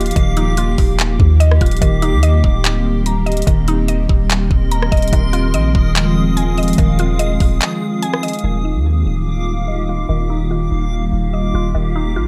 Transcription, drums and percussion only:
0.01 closed hi-hat soft
0.06 closed hi-hat medium
0.11 closed hi-hat medium
0.16 kick loud
0.16 closed hi-hat medium
0.37 closed hi-hat medium
0.57 closed hi-hat medium
0.78 kick loud
0.78 open hi-hat medium
0.99 clap loud
0.99 closed hi-hat medium
1.20 kick loud
1.40 closed hi-hat medium
1.51 cross-stick loud
1.61 kick loud
1.61 closed hi-hat medium
1.66 closed hi-hat medium
1.71 closed hi-hat medium
1.77 closed hi-hat medium
1.82 kick loud
1.82 closed hi-hat medium
2.02 closed hi-hat medium
2.23 closed hi-hat medium
2.44 kick loud
2.65 clap loud
2.65 closed hi-hat medium
3.06 closed hi-hat medium
3.27 closed hi-hat soft
3.32 closed hi-hat soft
3.37 closed hi-hat medium
3.42 closed hi-hat medium
3.47 kick loud
3.47 closed hi-hat medium
3.68 closed hi-hat medium
3.88 closed hi-hat medium
4.09 kick loud
4.30 clap loud
4.30 closed hi-hat medium
4.51 kick medium
4.71 closed hi-hat medium
4.82 cross-stick loud
4.92 kick loud
4.92 closed hi-hat soft
4.97 closed hi-hat soft
5.02 closed hi-hat medium
5.08 closed hi-hat medium
5.13 kick loud
5.13 closed hi-hat medium
5.33 closed hi-hat medium
5.54 closed hi-hat medium
5.75 kick loud
5.96 clap loud
5.96 closed hi-hat medium
6.37 closed hi-hat medium
6.58 closed hi-hat soft
6.63 closed hi-hat soft
6.68 closed hi-hat medium
6.73 closed hi-hat medium
6.78 kick loud
6.78 closed hi-hat medium
6.99 closed hi-hat medium
7.19 closed hi-hat medium
7.40 kick loud
7.40 open hi-hat medium
7.61 clap loud
7.61 closed hi-hat medium
8.02 closed hi-hat medium
8.13 cross-stick loud
8.23 closed hi-hat medium
8.28 closed hi-hat medium
8.33 closed hi-hat medium
8.39 closed hi-hat medium

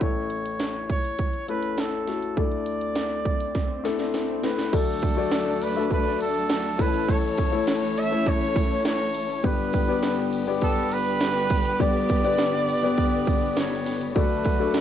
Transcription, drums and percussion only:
0.01 kick loud
0.01 closed hi-hat medium
0.30 closed hi-hat medium
0.46 closed hi-hat soft
0.60 snare medium
0.60 closed hi-hat medium
0.90 kick medium
0.90 closed hi-hat medium
1.05 closed hi-hat soft
1.19 kick medium
1.19 closed hi-hat medium
1.33 closed hi-hat soft
1.48 closed hi-hat medium
1.63 closed hi-hat soft
1.78 snare medium
1.78 closed hi-hat medium
1.93 closed hi-hat soft
2.08 snare soft
2.08 closed hi-hat medium
2.23 closed hi-hat soft
2.37 kick loud
2.37 closed hi-hat medium
2.52 closed hi-hat soft
2.66 closed hi-hat medium
2.81 closed hi-hat soft
2.95 snare medium
2.95 closed hi-hat medium
3.11 closed hi-hat soft
3.25 kick medium
3.25 closed hi-hat medium
3.40 closed hi-hat soft
3.55 kick medium
3.55 snare soft
3.55 closed hi-hat medium
3.85 snare medium
3.85 closed hi-hat medium
3.99 snare medium
3.99 closed hi-hat soft
4.14 snare medium
4.14 closed hi-hat medium
4.29 closed hi-hat soft
4.43 snare medium
4.43 closed hi-hat medium
4.58 snare medium
4.58 closed hi-hat soft
4.73 kick loud
4.73 crash loud
4.73 ride medium
5.02 kick medium
5.02 ride medium
5.31 snare loud
5.31 ride medium
5.62 ride medium
5.91 kick medium
5.91 ride medium
6.21 ride medium
6.50 snare loud
6.50 ride medium
6.79 kick medium
6.79 open hi-hat medium
6.79 ride medium
6.94 ride soft
7.09 kick loud
7.09 ride medium
7.38 kick medium
7.38 ride medium
7.67 snare loud
7.67 ride medium
7.98 ride medium
8.26 kick medium
8.26 ride medium
8.56 kick loud
8.56 ride medium
8.85 snare loud
8.85 ride medium
9.15 open hi-hat medium
9.15 ride medium
9.30 ride soft
9.44 kick loud
9.44 ride medium
9.73 kick medium
9.73 ride medium
10.03 snare medium
10.03 ride medium
10.33 ride medium
10.62 kick medium
10.62 ride medium
10.92 ride medium
11.21 snare loud
11.21 ride medium
11.50 kick medium
11.50 open hi-hat medium
11.50 ride medium
11.65 ride soft
11.80 kick loud
11.80 ride medium
12.09 kick medium
12.09 ride medium
12.24 ride medium
12.38 snare loud
12.38 ride medium
12.69 ride medium
12.98 kick medium
12.98 ride medium
13.27 kick loud
13.27 ride medium
13.56 snare loud
13.56 ride medium
13.86 snare soft
13.86 open hi-hat medium
13.86 ride medium
14.01 ride soft
14.16 kick loud
14.16 ride medium
14.45 kick medium
14.45 ride medium
14.74 snare loud
14.74 ride medium

